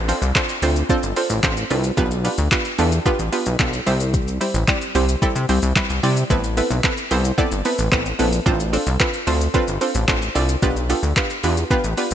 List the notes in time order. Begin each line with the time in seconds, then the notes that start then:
Already playing: A1, downlifter
0.08 C4 D4 F4 A4 C5, open hi-hat, shaker
0.22 C2, shaker
0.35 C4 D4 F4 A4 C5, kick, clap, closed hi-hat, shaker
0.49 shaker
0.62 D2 C4 D4 F4 A4 C5, open hi-hat, shaker
0.76 shaker
0.90 C4 D4 F4 A4 C5, kick, closed hi-hat, shaker
1.03 G1, shaker
1.16 C4 D4 F4 A4 C5, open hi-hat, shaker
1.30 A1, shaker
1.43 A1 C4 D4 F4 A4 C5, kick, clap, closed hi-hat, shaker
1.57 shaker
1.70 C2 C4 D4 F4 A4 B4, open hi-hat, shaker
1.84 shaker
1.97 B1 B3 D4 F4 G4 B4, kick, closed hi-hat, shaker
2.11 shaker
2.24 B3 D4 F4 G4 B4, open hi-hat, shaker
2.38 D2, shaker
2.51 B3 D4 F4 G4 B4, kick, clap, closed hi-hat, shaker
2.65 shaker
2.78 E2 B3 D4 F4 G4 A4, open hi-hat, shaker
2.92 shaker
3.06 B3 D4 F4 G4 B4, kick, closed hi-hat, shaker
3.19 A1, shaker
3.32 B3 D4 F4 G4 B4, open hi-hat, shaker
3.46 B1, shaker
3.60 B1 B3 D4 F4 G4 A4, kick, clap, closed hi-hat, shaker
3.73 shaker
3.86 C2 G3 C4 E4 G4 C5, open hi-hat, shaker
4.00 shaker
4.14 kick, closed hi-hat, shaker
4.28 shaker
4.41 G3 C4 E4 G4 C5, open hi-hat, shaker
4.54 A1, shaker
4.68 G3 C4 E4 G4 D5, kick, clap, closed hi-hat, shaker
4.81 shaker
4.95 C2 G3 C4 E4 G4 C5, open hi-hat, shaker
5.09 shaker
5.22 G3 C4 E4 G4 A4, kick, closed hi-hat, shaker
5.36 C3, shaker
5.49 C2 G3 C4 E4 G4 C5, open hi-hat, shaker
5.62 C2, shaker
5.76 C2 G3 C4 E4 G4 B4, kick, clap, closed hi-hat, shaker
5.90 C2, shaker
6.03 C3 G3 C4 E4 G4 D5, open hi-hat, shaker
6.17 shaker
6.30 A1 B3 C4 E4 A4 B4, kick, closed hi-hat, shaker
6.44 shaker
6.57 B3 C4 E4 A4 B4, open hi-hat, shaker
6.71 B1, shaker
6.84 B3 C4 E4 A4 B4, kick, clap, closed hi-hat, shaker
6.97 shaker
7.11 C2 B3 C4 E4 A4 C5, open hi-hat, shaker
7.25 shaker
7.38 B3 C4 E4 A4 D5, kick, closed hi-hat, shaker
7.52 G1, shaker
7.65 B3 C4 E4 A4 B4, open hi-hat, shaker
7.78 A1, shaker
7.92 A1 B3 C4 E4 A4 B4, kick, clap, closed hi-hat, shaker
8.06 shaker
8.19 A#1 B3 C4 E4 A4 B4, open hi-hat, shaker
8.33 shaker
8.46 A1 C4 D4 F4 A4 C5, kick, closed hi-hat, shaker
8.60 shaker
8.73 C4 D4 F4 A4 C5, open hi-hat, shaker
8.87 C2, shaker
9.00 C4 D4 F4 A4 B4, kick, clap, closed hi-hat, shaker
9.14 shaker
9.27 D2 C4 D4 F4 A4 C5, open hi-hat, shaker
9.41 shaker
9.54 C4 D4 F4 A4 B4, kick, closed hi-hat, shaker
9.68 G1, shaker
9.81 C4 D4 F4 A4 C5, open hi-hat, shaker
9.95 A1, shaker
10.08 A1 C4 D4 F4 A4 C5, kick, clap, closed hi-hat, shaker
10.22 shaker
10.35 C2 C4 D4 F4 A4 D5, open hi-hat, shaker
10.49 shaker
10.62 B1 B3 D4 F4 G4 B4, kick, closed hi-hat, shaker
10.76 shaker
10.89 B3 D4 F4 G4 A4, open hi-hat, shaker
11.03 D2, shaker
11.17 B3 D4 F4 G4 B4, kick, clap, closed hi-hat, shaker
11.30 shaker
11.43 E2 B3 D4 F4 G4 B4, open hi-hat, shaker
11.57 shaker
11.71 B3 D4 F4 G4 B4, kick, closed hi-hat, shaker
11.84 A1, shaker
11.97 B3 D4 F4 G4 B4, open hi-hat, shaker
12.11 shaker